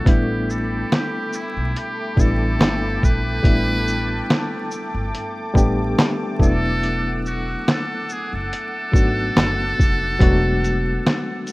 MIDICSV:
0, 0, Header, 1, 6, 480
1, 0, Start_track
1, 0, Tempo, 845070
1, 33, Time_signature, 4, 2, 24, 8
1, 6545, End_track
2, 0, Start_track
2, 0, Title_t, "Analog synth pad"
2, 0, Program_c, 0, 89
2, 0, Note_on_c, 0, 57, 83
2, 33, Note_on_c, 0, 83, 73
2, 34, Note_on_c, 0, 79, 74
2, 36, Note_on_c, 0, 86, 94
2, 1934, Note_off_c, 0, 83, 0
2, 1948, Note_on_c, 0, 81, 80
2, 3611, Note_off_c, 0, 79, 0
2, 3614, Note_off_c, 0, 81, 0
2, 3628, Note_on_c, 0, 88, 92
2, 3631, Note_on_c, 0, 78, 83
2, 6545, Note_off_c, 0, 57, 0
2, 6545, Note_off_c, 0, 78, 0
2, 6545, Note_off_c, 0, 86, 0
2, 6545, Note_off_c, 0, 88, 0
2, 6545, End_track
3, 0, Start_track
3, 0, Title_t, "Muted trumpet"
3, 0, Program_c, 1, 59
3, 0, Note_on_c, 1, 69, 93
3, 50, Note_on_c, 1, 67, 98
3, 58, Note_off_c, 1, 69, 0
3, 288, Note_on_c, 1, 69, 93
3, 297, Note_off_c, 1, 67, 0
3, 529, Note_on_c, 1, 67, 101
3, 537, Note_off_c, 1, 69, 0
3, 770, Note_on_c, 1, 64, 95
3, 779, Note_off_c, 1, 67, 0
3, 1011, Note_on_c, 1, 67, 101
3, 1020, Note_off_c, 1, 64, 0
3, 1251, Note_on_c, 1, 69, 108
3, 1260, Note_off_c, 1, 67, 0
3, 1729, Note_on_c, 1, 71, 127
3, 1738, Note_off_c, 1, 69, 0
3, 2681, Note_off_c, 1, 71, 0
3, 3646, Note_on_c, 1, 69, 127
3, 4097, Note_off_c, 1, 69, 0
3, 4128, Note_on_c, 1, 66, 98
3, 4370, Note_on_c, 1, 69, 121
3, 4379, Note_off_c, 1, 66, 0
3, 4613, Note_on_c, 1, 68, 101
3, 4621, Note_off_c, 1, 69, 0
3, 4743, Note_on_c, 1, 69, 115
3, 4752, Note_off_c, 1, 68, 0
3, 6545, Note_off_c, 1, 69, 0
3, 6545, End_track
4, 0, Start_track
4, 0, Title_t, "Reed electric piano"
4, 0, Program_c, 2, 4
4, 0, Control_c, 2, 64, 127
4, 26, Note_on_c, 2, 55, 72
4, 31, Note_on_c, 2, 57, 68
4, 36, Note_on_c, 2, 59, 70
4, 41, Control_c, 2, 64, 0
4, 41, Note_on_c, 2, 62, 66
4, 46, Note_on_c, 2, 64, 80
4, 142, Control_c, 2, 64, 127
4, 920, Note_off_c, 2, 55, 0
4, 922, Note_off_c, 2, 57, 0
4, 925, Note_off_c, 2, 59, 0
4, 927, Note_off_c, 2, 62, 0
4, 930, Note_off_c, 2, 64, 0
4, 1228, Note_on_c, 2, 55, 75
4, 1234, Note_on_c, 2, 57, 70
4, 1239, Note_on_c, 2, 59, 66
4, 1242, Note_on_c, 2, 62, 69
4, 1249, Note_on_c, 2, 64, 81
4, 1898, Note_off_c, 2, 55, 0
4, 1901, Note_off_c, 2, 57, 0
4, 1904, Note_off_c, 2, 59, 0
4, 1905, Note_off_c, 2, 62, 0
4, 1909, Note_off_c, 2, 64, 0
4, 1947, Note_on_c, 2, 55, 72
4, 1952, Note_on_c, 2, 57, 62
4, 1957, Note_on_c, 2, 59, 65
4, 1962, Note_on_c, 2, 62, 69
4, 1967, Note_on_c, 2, 64, 78
4, 2840, Note_off_c, 2, 55, 0
4, 2843, Note_off_c, 2, 57, 0
4, 2846, Note_off_c, 2, 59, 0
4, 2848, Note_off_c, 2, 62, 0
4, 2851, Note_off_c, 2, 64, 0
4, 3145, Note_on_c, 2, 55, 89
4, 3151, Note_on_c, 2, 57, 86
4, 3155, Note_on_c, 2, 59, 84
4, 3162, Note_on_c, 2, 62, 85
4, 3167, Note_on_c, 2, 67, 103
4, 3626, Note_off_c, 2, 57, 0
4, 3627, Note_on_c, 2, 54, 76
4, 3629, Note_off_c, 2, 55, 0
4, 3630, Note_off_c, 2, 59, 0
4, 3632, Note_on_c, 2, 57, 75
4, 3636, Note_off_c, 2, 62, 0
4, 3637, Note_on_c, 2, 59, 73
4, 3640, Note_off_c, 2, 67, 0
4, 3640, Control_c, 2, 64, 0
4, 3643, Note_on_c, 2, 62, 70
4, 3647, Note_on_c, 2, 64, 85
4, 3752, Control_c, 2, 64, 127
4, 4520, Note_off_c, 2, 54, 0
4, 4523, Note_off_c, 2, 57, 0
4, 4525, Note_off_c, 2, 59, 0
4, 4528, Note_off_c, 2, 62, 0
4, 4531, Note_off_c, 2, 64, 0
4, 5066, Note_on_c, 2, 54, 73
4, 5070, Note_on_c, 2, 57, 73
4, 5076, Note_on_c, 2, 59, 71
4, 5081, Note_on_c, 2, 62, 66
4, 5085, Note_on_c, 2, 66, 85
4, 5737, Note_off_c, 2, 54, 0
4, 5739, Note_off_c, 2, 57, 0
4, 5742, Note_off_c, 2, 59, 0
4, 5745, Note_off_c, 2, 62, 0
4, 5747, Note_off_c, 2, 66, 0
4, 5789, Note_on_c, 2, 54, 88
4, 5794, Note_on_c, 2, 56, 62
4, 5798, Note_on_c, 2, 59, 82
4, 5803, Note_on_c, 2, 62, 78
4, 5809, Note_on_c, 2, 66, 102
4, 5831, Note_on_c, 2, 57, 77
4, 5835, Note_off_c, 2, 56, 0
4, 6545, Note_off_c, 2, 54, 0
4, 6545, Note_off_c, 2, 57, 0
4, 6545, Note_off_c, 2, 59, 0
4, 6545, Note_off_c, 2, 62, 0
4, 6545, Note_off_c, 2, 66, 0
4, 6545, End_track
5, 0, Start_track
5, 0, Title_t, "Upright bass"
5, 0, Program_c, 3, 32
5, 38, Note_on_c, 3, 33, 103
5, 464, Note_off_c, 3, 33, 0
5, 890, Note_on_c, 3, 35, 83
5, 983, Note_off_c, 3, 35, 0
5, 1235, Note_on_c, 3, 33, 107
5, 1449, Note_off_c, 3, 33, 0
5, 1472, Note_on_c, 3, 31, 101
5, 1687, Note_off_c, 3, 31, 0
5, 1724, Note_on_c, 3, 34, 96
5, 1933, Note_off_c, 3, 34, 0
5, 1955, Note_on_c, 3, 33, 102
5, 2383, Note_off_c, 3, 33, 0
5, 2808, Note_on_c, 3, 31, 84
5, 2902, Note_off_c, 3, 31, 0
5, 3154, Note_on_c, 3, 33, 96
5, 3368, Note_off_c, 3, 33, 0
5, 3634, Note_on_c, 3, 28, 99
5, 4277, Note_off_c, 3, 28, 0
5, 4731, Note_on_c, 3, 30, 85
5, 4824, Note_off_c, 3, 30, 0
5, 5076, Note_on_c, 3, 32, 91
5, 5289, Note_off_c, 3, 32, 0
5, 5317, Note_on_c, 3, 30, 97
5, 5530, Note_off_c, 3, 30, 0
5, 5566, Note_on_c, 3, 29, 89
5, 5775, Note_off_c, 3, 29, 0
5, 5799, Note_on_c, 3, 28, 113
5, 6225, Note_off_c, 3, 28, 0
5, 6545, End_track
6, 0, Start_track
6, 0, Title_t, "Drums"
6, 35, Note_on_c, 9, 36, 115
6, 41, Note_on_c, 9, 42, 75
6, 92, Note_off_c, 9, 36, 0
6, 97, Note_off_c, 9, 42, 0
6, 283, Note_on_c, 9, 82, 43
6, 340, Note_off_c, 9, 82, 0
6, 524, Note_on_c, 9, 38, 103
6, 527, Note_on_c, 9, 39, 89
6, 528, Note_on_c, 9, 42, 55
6, 581, Note_off_c, 9, 38, 0
6, 584, Note_off_c, 9, 39, 0
6, 585, Note_off_c, 9, 42, 0
6, 755, Note_on_c, 9, 82, 56
6, 811, Note_off_c, 9, 82, 0
6, 1002, Note_on_c, 9, 42, 80
6, 1059, Note_off_c, 9, 42, 0
6, 1233, Note_on_c, 9, 36, 99
6, 1245, Note_on_c, 9, 82, 55
6, 1290, Note_off_c, 9, 36, 0
6, 1302, Note_off_c, 9, 82, 0
6, 1481, Note_on_c, 9, 38, 110
6, 1484, Note_on_c, 9, 39, 95
6, 1488, Note_on_c, 9, 42, 84
6, 1538, Note_off_c, 9, 38, 0
6, 1541, Note_off_c, 9, 39, 0
6, 1544, Note_off_c, 9, 42, 0
6, 1722, Note_on_c, 9, 36, 85
6, 1728, Note_on_c, 9, 82, 52
6, 1779, Note_off_c, 9, 36, 0
6, 1785, Note_off_c, 9, 82, 0
6, 1954, Note_on_c, 9, 36, 113
6, 1960, Note_on_c, 9, 42, 77
6, 2011, Note_off_c, 9, 36, 0
6, 2017, Note_off_c, 9, 42, 0
6, 2202, Note_on_c, 9, 82, 42
6, 2259, Note_off_c, 9, 82, 0
6, 2445, Note_on_c, 9, 38, 113
6, 2447, Note_on_c, 9, 39, 90
6, 2449, Note_on_c, 9, 42, 56
6, 2501, Note_off_c, 9, 38, 0
6, 2504, Note_off_c, 9, 39, 0
6, 2506, Note_off_c, 9, 42, 0
6, 2676, Note_on_c, 9, 82, 52
6, 2733, Note_off_c, 9, 82, 0
6, 2923, Note_on_c, 9, 42, 84
6, 2980, Note_off_c, 9, 42, 0
6, 3153, Note_on_c, 9, 36, 98
6, 3165, Note_on_c, 9, 82, 56
6, 3210, Note_off_c, 9, 36, 0
6, 3221, Note_off_c, 9, 82, 0
6, 3401, Note_on_c, 9, 38, 111
6, 3404, Note_on_c, 9, 39, 100
6, 3407, Note_on_c, 9, 42, 84
6, 3458, Note_off_c, 9, 38, 0
6, 3460, Note_off_c, 9, 39, 0
6, 3464, Note_off_c, 9, 42, 0
6, 3633, Note_on_c, 9, 36, 97
6, 3648, Note_on_c, 9, 82, 50
6, 3690, Note_off_c, 9, 36, 0
6, 3705, Note_off_c, 9, 82, 0
6, 3881, Note_on_c, 9, 42, 73
6, 3938, Note_off_c, 9, 42, 0
6, 4123, Note_on_c, 9, 82, 39
6, 4180, Note_off_c, 9, 82, 0
6, 4363, Note_on_c, 9, 38, 106
6, 4366, Note_on_c, 9, 39, 90
6, 4367, Note_on_c, 9, 42, 60
6, 4420, Note_off_c, 9, 38, 0
6, 4423, Note_off_c, 9, 39, 0
6, 4424, Note_off_c, 9, 42, 0
6, 4596, Note_on_c, 9, 82, 55
6, 4652, Note_off_c, 9, 82, 0
6, 4844, Note_on_c, 9, 42, 84
6, 4901, Note_off_c, 9, 42, 0
6, 5075, Note_on_c, 9, 36, 102
6, 5087, Note_on_c, 9, 82, 53
6, 5132, Note_off_c, 9, 36, 0
6, 5144, Note_off_c, 9, 82, 0
6, 5321, Note_on_c, 9, 38, 117
6, 5324, Note_on_c, 9, 39, 100
6, 5328, Note_on_c, 9, 42, 86
6, 5378, Note_off_c, 9, 38, 0
6, 5381, Note_off_c, 9, 39, 0
6, 5384, Note_off_c, 9, 42, 0
6, 5564, Note_on_c, 9, 36, 93
6, 5569, Note_on_c, 9, 82, 49
6, 5621, Note_off_c, 9, 36, 0
6, 5626, Note_off_c, 9, 82, 0
6, 5796, Note_on_c, 9, 36, 113
6, 5801, Note_on_c, 9, 42, 79
6, 5853, Note_off_c, 9, 36, 0
6, 5858, Note_off_c, 9, 42, 0
6, 6045, Note_on_c, 9, 42, 41
6, 6045, Note_on_c, 9, 82, 39
6, 6102, Note_off_c, 9, 42, 0
6, 6102, Note_off_c, 9, 82, 0
6, 6286, Note_on_c, 9, 38, 105
6, 6288, Note_on_c, 9, 39, 88
6, 6290, Note_on_c, 9, 42, 57
6, 6342, Note_off_c, 9, 38, 0
6, 6345, Note_off_c, 9, 39, 0
6, 6346, Note_off_c, 9, 42, 0
6, 6515, Note_on_c, 9, 42, 55
6, 6515, Note_on_c, 9, 82, 55
6, 6545, Note_off_c, 9, 42, 0
6, 6545, Note_off_c, 9, 82, 0
6, 6545, End_track
0, 0, End_of_file